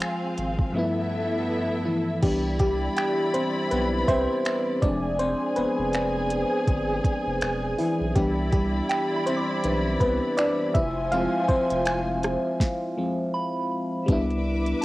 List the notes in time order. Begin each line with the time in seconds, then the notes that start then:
Already playing: F3 G#3 C4 F4 G#4 F5
0.00 finger snap, closed hi-hat
0.38 G#1, closed hi-hat
0.59 kick
0.72 G2 F3 A3 B3 E4 A4 E5
0.77 B3 E4
1.85 E3 E4
2.23 C2 E3 G3 B3 D4 E4 G4 D5 B5, kick, closed hi-hat, crash
2.59 G3 G4, kick, closed hi-hat
2.97 G5, finger snap, closed hi-hat
3.34 C4 C5, closed hi-hat
3.71 B1 B3 B4, closed hi-hat
4.08 C2 C4 C5 E5, kick, closed hi-hat
4.45 finger snap, closed hi-hat
4.82 F1 F3 G#3 C4 D4 G#4 D5 G#5, kick, closed hi-hat
5.19 C4 C5, closed hi-hat
5.56 F1 B3 B4, closed hi-hat
5.79 F1
5.93 finger snap, closed hi-hat
6.30 closed hi-hat
6.67 G1, kick, closed hi-hat
7.04 kick, closed hi-hat
7.27 F1
7.41 E1, finger snap, closed hi-hat
7.78 E3 E4, open hi-hat
8.01 B1
8.15 C2 E3 G3 B3 D4 E4 G4 D5 B5, kick, closed hi-hat
8.52 G3 G4, kick, closed hi-hat
8.89 G5, finger snap, closed hi-hat
9.16 B5
9.26 C4 C5, closed hi-hat
9.37 D6
9.64 B1 E3 D4 B4, closed hi-hat
10.00 C2 B3 B4, kick, closed hi-hat
10.37 D4 D5, finger snap, closed hi-hat
10.74 F1 F3 E4 C5 E5 G#5, kick, closed hi-hat
11.12 F3 G#3 C4 F4 F5, closed hi-hat
11.48 F1 C4 C5, kick, closed hi-hat
11.70 F1, closed hi-hat
11.85 G#5, finger snap, closed hi-hat
12.23 cross-stick, closed hi-hat
12.60 kick, snare
12.97 F3 G#3 C4
13.34 B5
14.06 C2 G3 B3 D4 B4 E5 D6, kick, closed hi-hat
14.12 E4
14.30 closed hi-hat
14.66 closed hi-hat
14.81 A5